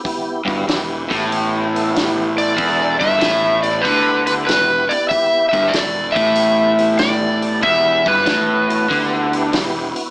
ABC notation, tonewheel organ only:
X:1
M:4/4
L:1/8
Q:"Swing" 1/4=95
K:Em
V:1 name="Tonewheel organ"
[B,EG] [B,EF] [B,EG] [B,EG] [B,EG] [B,EA] [B,EG] [B,EA] | [B,EA] [B,EG] [B,EG] [B,EG] [B,EG] [B,EG] [B,EG] [B,EG] | [B,EG] [B,EG] [B,EA] [B,EG] [B,EG] [B,EG] [B,EG] [B,EG] | [B,EG] [B,EG] [B,EA] [B,EF] [B,EG] [B,EG] [B,EG] [B,EF] |]